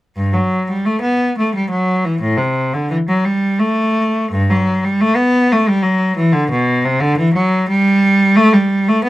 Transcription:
0, 0, Header, 1, 2, 480
1, 0, Start_track
1, 0, Key_signature, 1, "major"
1, 0, Tempo, 716846
1, 100, Time_signature, 3, 2, 24, 8
1, 577, Tempo, 689655
1, 3457, Tempo, 674916
1, 6367, End_track
2, 0, Start_track
2, 0, Title_t, "Cello"
2, 0, Program_c, 0, 42
2, 109, Note_on_c, 0, 43, 63
2, 222, Note_on_c, 0, 54, 56
2, 225, Note_off_c, 0, 43, 0
2, 460, Note_off_c, 0, 54, 0
2, 465, Note_on_c, 0, 55, 53
2, 571, Note_on_c, 0, 57, 65
2, 577, Note_off_c, 0, 55, 0
2, 682, Note_on_c, 0, 59, 56
2, 694, Note_off_c, 0, 57, 0
2, 921, Note_off_c, 0, 59, 0
2, 935, Note_on_c, 0, 57, 51
2, 1050, Note_off_c, 0, 57, 0
2, 1052, Note_on_c, 0, 55, 57
2, 1158, Note_on_c, 0, 54, 56
2, 1167, Note_off_c, 0, 55, 0
2, 1397, Note_off_c, 0, 54, 0
2, 1400, Note_on_c, 0, 52, 52
2, 1515, Note_on_c, 0, 45, 61
2, 1523, Note_off_c, 0, 52, 0
2, 1629, Note_on_c, 0, 48, 55
2, 1638, Note_off_c, 0, 45, 0
2, 1878, Note_off_c, 0, 48, 0
2, 1880, Note_on_c, 0, 50, 54
2, 1996, Note_on_c, 0, 52, 65
2, 2003, Note_off_c, 0, 50, 0
2, 2047, Note_off_c, 0, 52, 0
2, 2125, Note_on_c, 0, 54, 55
2, 2237, Note_on_c, 0, 55, 57
2, 2244, Note_off_c, 0, 54, 0
2, 2482, Note_off_c, 0, 55, 0
2, 2482, Note_on_c, 0, 57, 63
2, 2972, Note_off_c, 0, 57, 0
2, 2978, Note_on_c, 0, 43, 75
2, 3097, Note_off_c, 0, 43, 0
2, 3109, Note_on_c, 0, 54, 64
2, 3343, Note_off_c, 0, 54, 0
2, 3350, Note_on_c, 0, 55, 62
2, 3461, Note_on_c, 0, 57, 74
2, 3462, Note_off_c, 0, 55, 0
2, 3569, Note_on_c, 0, 59, 72
2, 3579, Note_off_c, 0, 57, 0
2, 3813, Note_off_c, 0, 59, 0
2, 3827, Note_on_c, 0, 57, 62
2, 3940, Note_on_c, 0, 55, 70
2, 3942, Note_off_c, 0, 57, 0
2, 4043, Note_on_c, 0, 54, 63
2, 4059, Note_off_c, 0, 55, 0
2, 4283, Note_on_c, 0, 52, 67
2, 4290, Note_off_c, 0, 54, 0
2, 4402, Note_on_c, 0, 50, 75
2, 4406, Note_off_c, 0, 52, 0
2, 4527, Note_off_c, 0, 50, 0
2, 4527, Note_on_c, 0, 47, 70
2, 4766, Note_off_c, 0, 47, 0
2, 4772, Note_on_c, 0, 48, 71
2, 4880, Note_on_c, 0, 50, 84
2, 4893, Note_off_c, 0, 48, 0
2, 5008, Note_off_c, 0, 50, 0
2, 5010, Note_on_c, 0, 52, 72
2, 5120, Note_on_c, 0, 54, 68
2, 5130, Note_off_c, 0, 52, 0
2, 5362, Note_off_c, 0, 54, 0
2, 5364, Note_on_c, 0, 55, 82
2, 5839, Note_off_c, 0, 55, 0
2, 5847, Note_on_c, 0, 57, 91
2, 5968, Note_on_c, 0, 55, 71
2, 5971, Note_off_c, 0, 57, 0
2, 6213, Note_off_c, 0, 55, 0
2, 6216, Note_on_c, 0, 57, 68
2, 6329, Note_on_c, 0, 59, 83
2, 6337, Note_off_c, 0, 57, 0
2, 6367, Note_off_c, 0, 59, 0
2, 6367, End_track
0, 0, End_of_file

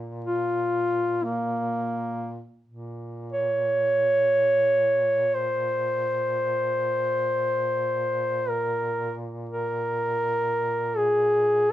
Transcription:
0, 0, Header, 1, 3, 480
1, 0, Start_track
1, 0, Key_signature, -5, "minor"
1, 0, Tempo, 500000
1, 11256, End_track
2, 0, Start_track
2, 0, Title_t, "Duduk"
2, 0, Program_c, 0, 69
2, 234, Note_on_c, 0, 65, 80
2, 1191, Note_on_c, 0, 58, 67
2, 1205, Note_off_c, 0, 65, 0
2, 2329, Note_off_c, 0, 58, 0
2, 3194, Note_on_c, 0, 73, 80
2, 5130, Note_on_c, 0, 72, 76
2, 5144, Note_off_c, 0, 73, 0
2, 8155, Note_on_c, 0, 70, 70
2, 8169, Note_off_c, 0, 72, 0
2, 8803, Note_off_c, 0, 70, 0
2, 9115, Note_on_c, 0, 70, 77
2, 10533, Note_on_c, 0, 68, 70
2, 10547, Note_off_c, 0, 70, 0
2, 11255, Note_off_c, 0, 68, 0
2, 11256, End_track
3, 0, Start_track
3, 0, Title_t, "Duduk"
3, 0, Program_c, 1, 69
3, 0, Note_on_c, 1, 46, 38
3, 2396, Note_off_c, 1, 46, 0
3, 2560, Note_on_c, 1, 46, 41
3, 11256, Note_off_c, 1, 46, 0
3, 11256, End_track
0, 0, End_of_file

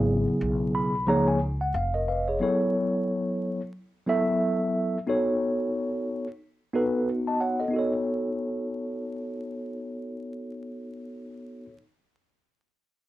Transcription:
0, 0, Header, 1, 4, 480
1, 0, Start_track
1, 0, Tempo, 666667
1, 1734, Time_signature, 4, 2, 24, 8
1, 9420, End_track
2, 0, Start_track
2, 0, Title_t, "Tine electric piano"
2, 0, Program_c, 0, 4
2, 0, Note_on_c, 0, 49, 75
2, 0, Note_on_c, 0, 54, 75
2, 0, Note_on_c, 0, 59, 75
2, 0, Note_on_c, 0, 64, 73
2, 0, Note_on_c, 0, 68, 85
2, 537, Note_on_c, 0, 83, 72
2, 667, Note_off_c, 0, 49, 0
2, 670, Note_off_c, 0, 54, 0
2, 673, Note_off_c, 0, 59, 0
2, 675, Note_off_c, 0, 64, 0
2, 679, Note_off_c, 0, 68, 0
2, 759, Note_off_c, 0, 83, 0
2, 769, Note_on_c, 0, 53, 94
2, 774, Note_on_c, 0, 58, 85
2, 778, Note_on_c, 0, 63, 77
2, 779, Note_on_c, 0, 82, 70
2, 782, Note_on_c, 0, 68, 82
2, 788, Note_on_c, 0, 73, 100
2, 908, Note_off_c, 0, 82, 0
2, 920, Note_on_c, 0, 80, 62
2, 986, Note_off_c, 0, 53, 0
2, 989, Note_off_c, 0, 58, 0
2, 991, Note_off_c, 0, 63, 0
2, 993, Note_off_c, 0, 68, 0
2, 996, Note_off_c, 0, 73, 0
2, 1009, Note_off_c, 0, 80, 0
2, 1159, Note_on_c, 0, 78, 60
2, 1249, Note_off_c, 0, 78, 0
2, 1258, Note_on_c, 0, 77, 66
2, 1388, Note_off_c, 0, 77, 0
2, 1397, Note_on_c, 0, 75, 61
2, 1402, Note_on_c, 0, 70, 45
2, 1493, Note_off_c, 0, 70, 0
2, 1498, Note_on_c, 0, 77, 58
2, 1501, Note_on_c, 0, 71, 49
2, 1631, Note_off_c, 0, 77, 0
2, 1632, Note_off_c, 0, 71, 0
2, 1639, Note_on_c, 0, 73, 60
2, 1646, Note_on_c, 0, 68, 51
2, 1712, Note_off_c, 0, 75, 0
2, 1727, Note_on_c, 0, 54, 74
2, 1733, Note_on_c, 0, 59, 72
2, 1737, Note_on_c, 0, 64, 68
2, 1738, Note_off_c, 0, 73, 0
2, 1743, Note_on_c, 0, 69, 63
2, 1747, Note_on_c, 0, 73, 85
2, 1869, Note_off_c, 0, 68, 0
2, 2589, Note_off_c, 0, 54, 0
2, 2592, Note_off_c, 0, 59, 0
2, 2594, Note_off_c, 0, 64, 0
2, 2597, Note_off_c, 0, 69, 0
2, 2599, Note_off_c, 0, 73, 0
2, 2926, Note_on_c, 0, 54, 77
2, 2930, Note_on_c, 0, 59, 75
2, 2935, Note_on_c, 0, 64, 70
2, 2941, Note_on_c, 0, 69, 72
2, 2946, Note_on_c, 0, 76, 95
2, 3574, Note_off_c, 0, 54, 0
2, 3577, Note_off_c, 0, 59, 0
2, 3579, Note_off_c, 0, 64, 0
2, 3582, Note_off_c, 0, 69, 0
2, 3584, Note_off_c, 0, 76, 0
2, 3647, Note_on_c, 0, 59, 70
2, 3651, Note_on_c, 0, 63, 69
2, 3658, Note_on_c, 0, 66, 65
2, 3662, Note_on_c, 0, 69, 65
2, 3667, Note_on_c, 0, 73, 88
2, 4509, Note_off_c, 0, 59, 0
2, 4511, Note_off_c, 0, 63, 0
2, 4514, Note_off_c, 0, 66, 0
2, 4516, Note_off_c, 0, 69, 0
2, 4519, Note_off_c, 0, 73, 0
2, 4847, Note_on_c, 0, 59, 84
2, 4850, Note_on_c, 0, 63, 72
2, 4855, Note_on_c, 0, 66, 69
2, 4861, Note_on_c, 0, 69, 72
2, 4864, Note_on_c, 0, 71, 88
2, 5098, Note_off_c, 0, 69, 0
2, 5099, Note_off_c, 0, 71, 0
2, 5236, Note_on_c, 0, 81, 51
2, 5241, Note_on_c, 0, 75, 46
2, 5329, Note_off_c, 0, 81, 0
2, 5331, Note_on_c, 0, 78, 57
2, 5332, Note_off_c, 0, 75, 0
2, 5335, Note_on_c, 0, 73, 44
2, 5467, Note_off_c, 0, 78, 0
2, 5469, Note_off_c, 0, 73, 0
2, 5469, Note_on_c, 0, 75, 58
2, 5476, Note_on_c, 0, 69, 44
2, 5495, Note_off_c, 0, 59, 0
2, 5497, Note_off_c, 0, 63, 0
2, 5499, Note_off_c, 0, 66, 0
2, 5530, Note_on_c, 0, 59, 65
2, 5548, Note_on_c, 0, 63, 61
2, 5568, Note_on_c, 0, 66, 58
2, 5579, Note_off_c, 0, 69, 0
2, 5587, Note_on_c, 0, 69, 56
2, 5606, Note_on_c, 0, 73, 72
2, 5700, Note_off_c, 0, 75, 0
2, 8388, Note_off_c, 0, 59, 0
2, 8407, Note_off_c, 0, 63, 0
2, 8426, Note_off_c, 0, 66, 0
2, 8446, Note_off_c, 0, 69, 0
2, 8464, Note_off_c, 0, 73, 0
2, 9420, End_track
3, 0, Start_track
3, 0, Title_t, "Upright bass"
3, 0, Program_c, 1, 32
3, 0, Note_on_c, 1, 32, 95
3, 175, Note_off_c, 1, 32, 0
3, 293, Note_on_c, 1, 35, 83
3, 772, Note_off_c, 1, 35, 0
3, 772, Note_on_c, 1, 37, 84
3, 1229, Note_off_c, 1, 37, 0
3, 1253, Note_on_c, 1, 29, 72
3, 1709, Note_off_c, 1, 29, 0
3, 9420, End_track
4, 0, Start_track
4, 0, Title_t, "Muted upright bass strokes"
4, 197, Note_on_c, 9, 29, 42
4, 269, Note_off_c, 9, 29, 0
4, 9420, End_track
0, 0, End_of_file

